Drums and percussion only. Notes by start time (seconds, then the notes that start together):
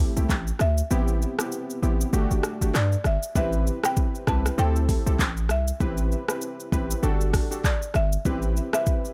0.17 shaker
0.30 kick, clap, shaker
0.47 shaker
0.59 cross-stick, shaker
0.78 shaker
0.91 shaker
1.08 shaker
1.22 shaker
1.39 cross-stick, shaker
1.52 shaker
1.70 shaker
1.83 shaker
2.01 shaker
2.13 shaker
2.31 shaker
2.43 cross-stick, shaker
2.62 shaker
2.75 cross-stick, clap, shaker
2.92 shaker
3.04 cross-stick, shaker
3.23 shaker
3.36 kick, shaker
3.53 shaker
3.67 shaker
3.84 cross-stick, shaker
3.97 kick, shaker
4.15 shaker
4.27 kick, cross-stick, shaker
4.46 cross-stick, shaker
4.58 shaker
4.76 shaker
4.89 kick, open hi-hat, shaker
5.07 shaker
5.19 kick, clap, shaker
5.37 shaker
5.49 cross-stick, shaker
5.68 shaker
5.80 kick, shaker
5.97 shaker
6.12 shaker
6.28 cross-stick, shaker
6.41 shaker
6.60 shaker
6.72 kick, shaker
6.91 shaker
7.03 shaker
7.21 shaker
7.34 kick, cross-stick, open hi-hat, shaker
7.52 shaker
7.64 kick, cross-stick, clap, shaker
7.82 shaker
7.94 cross-stick, shaker
8.12 shaker
8.25 kick, shaker
8.42 shaker
8.57 shaker
8.73 cross-stick, shaker
8.86 kick, shaker
9.05 shaker